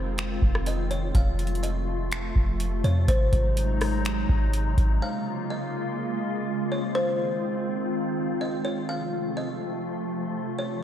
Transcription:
Already playing: F1 D#3 G#3 C4 F4 C5
0.18 finger snap, closed hi-hat
0.42 F1, kick
0.55 cross-stick
0.66 D#5, closed hi-hat
0.91 C#5, closed hi-hat
1.15 F1 C3 F3 A3 F5, kick, closed hi-hat
1.39 closed hi-hat
1.47 closed hi-hat
1.55 closed hi-hat
1.63 D#5, closed hi-hat
2.12 finger snap, closed hi-hat
2.36 F1, kick
2.60 closed hi-hat
2.84 F2 C#5, closed hi-hat
3.08 G#1 F#3 G#3 D#4 C5, kick, closed hi-hat
3.33 G#1, kick, closed hi-hat
3.57 closed hi-hat
3.81 cross-stick, open hi-hat
4.05 finger snap, closed hi-hat
4.29 G#1, kick
4.53 closed hi-hat
4.78 G#1, kick, closed hi-hat
5.02 C#3 G#3 A#3 F4 F5
5.50 D#5
6.72 C#5
6.95 D#3 C4 C5
8.41 D#5
8.65 C#5
8.89 C3 F3 A3 F5
9.37 D#5
10.59 C#5

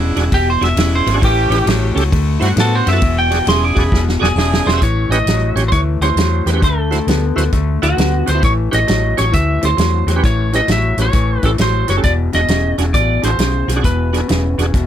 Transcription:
Already playing: E1 E2 C#3 G#3 D4 E4
0.16 E1 E2 C#3 D4 F#4 G#4, snare, ride
0.32 E1 E2 B2 G4, kick, snare, ride
0.50 C5
0.61 E1 E2 B2 D4 F#4 G#4 E5, snare, ride
0.76 E1 E2 C#3 G#3 D4 E4, snare, ride
0.95 C5
1.06 G#1 E2 C#3 F#4 B4, snare, ride
1.14 D4 F#4 G#4
1.21 A1 A2 E3 A3 C#4 G4, kick, snare, ride
1.25 G4
1.50 A1 A2 E3 C#4 G4 B4, snare, ride
1.66 A1 A2 F#3, snare, ride
1.95 C#2 A2 F#3 C#4 G4 A4, ride
1.99 snare
2.12 D2 D3 A3, kick, snare, ride
2.40 G2 D3 A3 C4 D4 E4 F#4 C5, ride
2.44 snare
2.56 A2 D3 B3 C4 D4 F#4 A4, snare, ride
2.75 C5
2.86 F#2 D3 B3 F#4 C5 E5, snare, ride
2.93 E4 F#4 A4
3.01 E1 E2 B2, kick, snare, ride
3.19 G5
3.30 E2 B2 F#4 G#4 D5, snare, ride
3.45 E1 E2 C#3 D4 E4 G#4 C6, snare, ride
3.64 D6
3.75 E1 E2 C#3 F#4 G#4 D5 B5, kick, snare, ride
3.92 E1 E2 B2, kick, snare
4.09 snare
4.19 E1 E2 B2 F#4 G#4 D5
4.24 snare
4.35 E1 E2 C#3 D4 E4 G#4, snare
4.53 snare
4.65 E1 E2 C#3 G#4 C5 D5, snare
4.73 F#4 G#4 E5
4.78 A1 C5, closed hi-hat
4.82 A2 E3 C#5, kick, snare
5.09 A1 A2 E3 C#4 G4 B4 D#5, closed hi-hat
5.13 snare
5.26 A1 A2 F#3, snare, closed hi-hat
5.55 A1 A2 F#3 C#4 G4 C#5, snare, closed hi-hat
5.68 D2 A2 C5 C#5, kick, closed hi-hat
5.73 E3, snare
6.00 D2 A2 E3 C#4 G4 C5 C#5, snare, closed hi-hat
6.16 E2 A2 F#3, snare, closed hi-hat
6.46 E2 A2 F#3 G4 B4, snare, closed hi-hat
6.53 C#4 G4 B4
6.62 D2 D3 A3 A4, kick, snare, closed hi-hat
6.91 D3 A3 E4 F#4 C5, snare, closed hi-hat
7.07 D2 D3 B3, snare, closed hi-hat
7.36 D2 D3 B3 E4 F#4 C5, snare, closed hi-hat
7.52 D2 D3 A3, kick, snare, closed hi-hat
7.82 D2 D3 A3 E4 F#4 D5, snare, closed hi-hat
7.97 D2 D3 B3, snare, closed hi-hat
8.26 D2 D3 B3 F#4 C5, snare, closed hi-hat
8.35 E4 F#4 C5
8.42 A1 A2 E3 C#5, kick, snare, closed hi-hat
8.71 A1 A2 E3 C#4 G4 B4 D#5, snare, closed hi-hat
8.87 A1 A2 F#3, snare, closed hi-hat
9.17 A1 A2 F#3 C#4 G4 C#5, snare, closed hi-hat
9.31 D2 A2 E3 E5, kick, snare, closed hi-hat
9.61 D2 A2 E3 C#4 G4 A4 C5, snare, closed hi-hat
9.77 E2 A2 F#3, snare, closed hi-hat
10.07 E2 A2 F#3 G4 C#5, snare, closed hi-hat
10.16 C#4 G4 B4
10.23 A1 A2 E3 C#5, kick, snare, closed hi-hat
10.52 A2 E3 C#4 G4 B4 D#5, snare, closed hi-hat
10.67 A1 A2 F#3, snare, closed hi-hat
10.72 E5
10.97 A1 A2 F#3 C#4 G4 B4, snare, closed hi-hat
11.02 C#5
11.12 A1 A2 E3, kick, snare, closed hi-hat
11.42 A1 A2 E3 C#4 G4 A4 B4, kick, snare, closed hi-hat
11.58 A1 A2 F#3 C5, snare, closed hi-hat
11.87 F#1 A2 F#3 G4 B4 C#5, snare, closed hi-hat
11.97 C#4 G4 A4
12.03 E1 E2 B2 D5, kick, snare, closed hi-hat
12.33 E1 E2 B2 D4 F#4 G#4 D#5, snare, closed hi-hat
12.48 E1 E2 C#3, snare, closed hi-hat
12.78 E1 E2 C#3 D4 F#4 G#4, snare, closed hi-hat
12.94 A1 E2 B2 D5, kick, snare, closed hi-hat
13.22 A1 E2 B2 D4 F#4 G#4 C5, snare, closed hi-hat
13.38 B1 E2 C#3, snare, closed hi-hat
13.67 B1 E2 C#3 F#4 G#4, snare, closed hi-hat
13.76 D4 F#4 G#4
13.83 E1 E2 B2 B4, kick, snare, closed hi-hat
14.13 E2 B2 D4 F#4 G#4, snare, closed hi-hat
14.28 E1 E2 C#3, snare, closed hi-hat
14.58 E1 E2 C#3 D4 F#4 G#4, snare, closed hi-hat
14.74 E1 E2 B2, kick, snare, closed hi-hat

